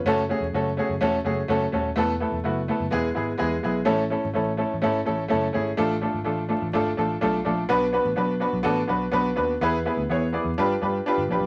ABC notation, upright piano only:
X:1
M:4/4
L:1/8
Q:1/4=126
K:A
V:1 name="Upright piano"
[A,CFA] [A,CFG] [A,CFA] [A,CFG] [A,CFA] [A,CFG] [A,CFA] [A,CFA] | [A,B,EA] [A,B,EA] [A,B,EF] [A,B,EA] [G,B,EG] [G,B,EG] [G,B,EG] [G,B,EG] | [A,CEA] [A,CEA] [A,CEA] [A,CEA] [A,CEA] [A,CEA] [A,CEA] [A,CEG] | [A,D=FA] [A,DFA] [A,DFA] [A,DFA] [A,DFA] [A,DFAa] [A,DFA=f] [A,DFAd] |
[B,DFB] [B,DFB] [B,DFB] [B,DFB] [B,DFA] [B,DFB] [B,DFB] [B,DFB] | [B,EGB] [B,EGB] [B,EGc] [B,EGd] [D=F=GB] [DFGB] [DFGB] [DFGB] |]